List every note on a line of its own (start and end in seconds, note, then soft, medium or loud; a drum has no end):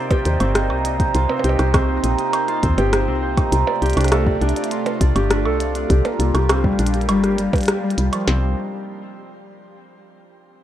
0.00 5.86 C3 medium
0.00 3.48 A#3 medium
0.00 0.40 C4 loud
0.00 0.70 D#4 medium
0.00 3.48 D#4 medium
0.00 1.14 F4 loud
0.00 0.10 G4 loud
0.00 0.25 C5 medium
0.00 1.12 D5 medium
0.11 1.44 G4 loud
0.11 kick loud
0.11 closed hi-hat soft
0.11 percussion blips loud
0.25 0.38 D#2 medium
0.25 0.55 C5 medium
0.25 closed hi-hat medium
0.40 0.72 G1 loud
0.40 1.29 C4 loud
0.40 closed hi-hat soft
0.40 percussion blips soft
0.55 0.99 C5 medium
0.55 cross-stick loud
0.55 closed hi-hat medium
0.70 1.10 C2 medium
0.70 0.84 D#4 medium
0.70 percussion blips soft
0.85 2.03 D#4 medium
0.85 closed hi-hat medium
1.00 1.58 C5 medium
1.00 kick loud
1.00 closed hi-hat medium
1.14 1.27 C2 loud
1.14 3.50 C4 medium
1.14 2.48 F4 loud
1.14 closed hi-hat medium
1.29 1.73 C4 loud
1.29 percussion blips medium
1.39 percussion blips medium
1.44 1.56 C2 medium
1.44 2.77 G4 loud
1.44 closed hi-hat medium
1.49 percussion blips medium
1.59 1.99 C2 loud
1.59 1.88 C5 medium
1.59 cross-stick medium
1.59 closed hi-hat medium
1.59 percussion blips medium
1.74 2.62 C4 loud
1.74 kick loud
1.74 cross-stick loud
1.74 closed hi-hat medium
1.74 percussion blips medium
1.89 2.33 C5 medium
2.03 2.16 A#1 medium
2.03 2.18 D#4 medium
2.03 closed hi-hat medium
2.18 3.37 D#4 medium
2.18 closed hi-hat soft
2.33 2.92 C5 medium
2.33 closed hi-hat medium
2.33 percussion blips medium
2.48 3.52 F4 loud
2.48 closed hi-hat soft
2.63 2.75 D#2 medium
2.63 3.07 C4 loud
2.63 kick loud
2.63 closed hi-hat medium
2.78 3.09 G1 loud
2.78 3.81 G4 loud
2.78 closed hi-hat soft
2.78 percussion blips medium
2.93 3.22 C5 medium
2.93 cross-stick loud
2.93 closed hi-hat medium
3.07 3.48 C2 medium
3.07 6.07 C4 loud
3.22 5.20 C5 medium
3.37 3.73 D#4 medium
3.37 kick loud
3.37 closed hi-hat soft
3.37 percussion blips medium
3.52 3.64 C2 loud
3.52 5.87 A3 medium
3.52 4.71 F4 medium
3.52 8.23 F4 medium
3.52 closed hi-hat medium
3.67 4.26 D5 medium
3.67 percussion blips medium
3.82 3.94 C2 medium
3.82 5.15 G4 loud
3.82 closed hi-hat soft
3.86 closed hi-hat soft
3.90 closed hi-hat soft
3.93 4.37 C2 loud
3.93 4.41 D4 loud
3.93 closed hi-hat soft
3.97 closed hi-hat medium
3.97 percussion blips medium
4.01 cross-stick medium
4.01 closed hi-hat medium
4.04 closed hi-hat medium
4.08 5.45 A4 loud
4.08 cross-stick loud
4.08 closed hi-hat medium
4.12 closed hi-hat medium
4.12 percussion blips medium
4.26 4.56 D5 medium
4.26 kick loud
4.41 4.53 C2 medium
4.41 5.30 D4 loud
4.41 closed hi-hat soft
4.49 closed hi-hat soft
4.56 5.00 D5 medium
4.56 closed hi-hat medium
4.64 closed hi-hat medium
4.71 4.85 F4 medium
4.71 closed hi-hat medium
4.86 7.38 F4 medium
4.86 closed hi-hat soft
4.86 percussion blips loud
5.01 5.13 C2 medium
5.01 5.60 D5 medium
5.01 kick loud
5.01 closed hi-hat medium
5.15 5.47 G1 loud
5.15 5.89 G4 loud
5.15 closed hi-hat medium
5.15 percussion blips medium
5.30 5.74 D4 loud
5.30 cross-stick loud
5.30 closed hi-hat medium
5.45 5.85 C2 loud
5.45 6.11 A4 loud
5.45 percussion blips soft
5.60 7.45 D5 medium
5.60 closed hi-hat medium
5.75 6.78 D4 loud
5.75 closed hi-hat medium
5.90 6.02 C2 loud
5.90 8.25 G3 medium
5.90 8.25 A#3 medium
5.90 6.00 G4 medium
5.90 kick loud
5.90 closed hi-hat medium
6.05 6.15 A#3 medium
6.05 closed hi-hat soft
6.05 percussion blips loud
6.19 6.32 C2 medium
6.19 6.34 A#3 medium
6.19 closed hi-hat medium
6.34 6.75 C2 loud
6.34 6.48 G4 medium
6.34 cross-stick medium
6.34 closed hi-hat medium
6.34 percussion blips medium
6.49 6.63 C4 loud
6.49 cross-stick loud
6.49 closed hi-hat medium
6.49 percussion blips medium
6.64 7.07 G3 loud
6.64 kick loud
6.79 7.10 A#1 medium
6.79 6.89 D4 loud
6.79 closed hi-hat medium
6.87 closed hi-hat medium
6.94 7.04 G4 medium
6.94 closed hi-hat soft
7.01 closed hi-hat soft
7.09 7.49 G1 medium
7.09 7.37 G3 loud
7.09 closed hi-hat medium
7.09 percussion blips medium
7.24 7.34 G4 medium
7.24 cross-stick medium
7.24 closed hi-hat soft
7.38 7.52 G3 medium
7.38 closed hi-hat medium
7.53 7.82 G3 medium
7.53 kick loud
7.53 closed hi-hat soft
7.53 percussion blips medium
7.56 closed hi-hat soft
7.58 closed hi-hat soft
7.61 closed hi-hat soft
7.63 closed hi-hat soft
7.66 7.74 G4 medium
7.66 cross-stick loud
7.66 closed hi-hat soft
7.68 closed hi-hat medium
7.83 7.96 G3 medium
7.90 closed hi-hat soft
7.98 8.10 C2 medium
7.98 8.32 G3 medium
7.98 closed hi-hat medium
8.13 8.32 F3 medium
8.13 closed hi-hat medium
8.13 percussion blips medium
8.27 8.55 C2 loud
8.27 8.55 C3 medium
8.27 8.55 A#3 medium
8.27 8.55 C4 medium
8.27 8.55 D4 medium
8.27 8.55 D#4 medium
8.27 snare loud